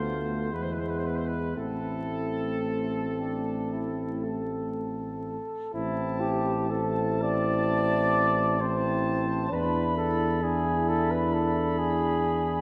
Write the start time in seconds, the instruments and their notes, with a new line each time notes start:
Already playing: tuba D2, trombone A3, euphonium B3, flugelhorn F4, trumpet section C5
0.52 tuba E2, trombone G#3, euphonium B3, flugelhorn E4, trumpet section B4
0.62 trumpet section C5
0.70 trumpet section B4
0.78 trumpet section C5
0.87 trumpet section B4
0.96 trumpet section C5
1.05 trumpet section B4
1.15 trumpet section C5
1.25 trumpet section B4
1.56 tuba A1, trombone A3, euphonium C4, flugelhorn E4, trumpet section A4
2.67 flugelhorn C4
3.21 flugelhorn D4
3.73 flugelhorn E4
4.24 flugelhorn A4
5.73 tuba A1, trombone C4, flugelhorn E4, euphonium E4, trumpet section A5
6.20 flugelhorn G4
6.70 trombone C4, euphonium E4, flugelhorn A4, trumpet section A5
7.22 flugelhorn D5
8.61 trombone C4, euphonium E4, flugelhorn C5, trumpet section A5
9.52 tuba E2, trombone D4, euphonium E4, flugelhorn B4, trumpet section B5
9.97 flugelhorn A4
10.42 trombone D4, euphonium E4, flugelhorn G#4, trumpet section B5
10.89 flugelhorn A4
11.11 flugelhorn B4
11.33 flugelhorn A4
11.79 flugelhorn G#4